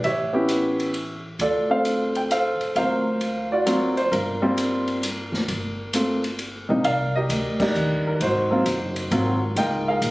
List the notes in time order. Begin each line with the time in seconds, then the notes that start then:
0.03 A1 G4 C#5 E5, kick, ride
0.33 B3 C#4 E4 G4
0.49 hi-hat pedal, ride
0.80 ride
0.94 ride
1.39 D2 F4 A4 D5, kick, ride
1.70 A3 C4 D4 F4 A4 C5 F5
1.85 hi-hat pedal, ride
2.15 G5, ride
2.31 A4 C5 F5, hi-hat pedal, ride
2.60 muted upright bass stroke, ride
2.75 D2 F#3 A#3 C4 F4 A#4 C5 F5, kick, ride
3.21 ride
3.52 F4 F#4 D5
3.66 F#3 A#3 C4 F4, hi-hat pedal, ride
3.97 C5, ride
4.12 G1 D4 F4 A#4, kick, ride
4.42 G3 A#3 C4 F4
4.58 hi-hat pedal, ride
4.88 ride
5.03 hi-hat pedal, ride
5.32 D2, snare
5.48 G1, kick, ride
5.93 A3 A#3 C4 F4, hi-hat pedal, ride
6.24 ride
6.39 ride
6.69 A#1 C3 G3 A#3 D4 D#4
6.84 C2 A#4 D5 F5, kick, ride
7.16 G4 A#4 D#5
7.29 D2, kick, hi-hat pedal, ride
7.60 G3 A#3 D4 D#4 G4 A#4 D5, kick, crash
7.75 D#2, hi-hat pedal
8.07 A#4
8.15 A#4
8.20 G#1 D#4 F#4 C5, kick, ride
8.51 F#3 A#3 C4 F4
8.65 F#1, kick, hi-hat pedal, ride
8.96 ride
9.11 G#1 F#3 A#3 C4 F4, kick, ride
9.56 C#2 G#3 A#3 D#4 F4 A#4 D#5 G5, kick, ride
9.88 G#4 A#4 F5
10.01 A#1, kick, hi-hat pedal, ride